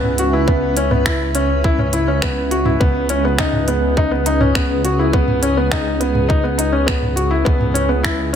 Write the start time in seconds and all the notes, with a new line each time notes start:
Already playing: C#2 B3 C#4 B4 E5
0.03 mid tom
0.18 F#4, closed hi-hat
0.33 E4
0.48 B3, kick
0.77 C#4, closed hi-hat
0.91 B3, mid tom
1.06 E4, finger snap, kick
1.35 C#4, closed hi-hat
1.64 E4, kick
1.78 C#4, mid tom
1.93 E4, closed hi-hat
2.08 C#4
2.22 B3, finger snap, kick
2.51 F#4, closed hi-hat
2.65 E4, mid tom
2.80 C#2 B3 G#4, kick
3.09 C#4, closed hi-hat
3.25 B3
3.39 D#4, finger snap, kick
3.53 mid tom
3.68 B3, closed hi-hat
3.97 D#4, kick
4.11 B3
4.26 D#4, closed hi-hat
4.41 C#4, mid tom
4.55 B3, finger snap, kick
4.85 F#4, closed hi-hat
4.99 E4
5.13 B3, kick
5.28 mid tom
5.43 C#4, closed hi-hat
5.57 B3
5.71 D#4, finger snap, kick
6.00 B3, closed hi-hat
6.15 mid tom
6.29 D#4, kick
6.44 B3
6.58 D#4, closed hi-hat
6.72 C#4
6.87 B3, finger snap, kick
7.03 mid tom
7.16 F#4, closed hi-hat
7.31 E4
7.45 C#2 B3 C#4 B4 E5, kick
7.61 mid tom
7.74 C#4, closed hi-hat
7.89 B3
8.03 E4, finger snap, kick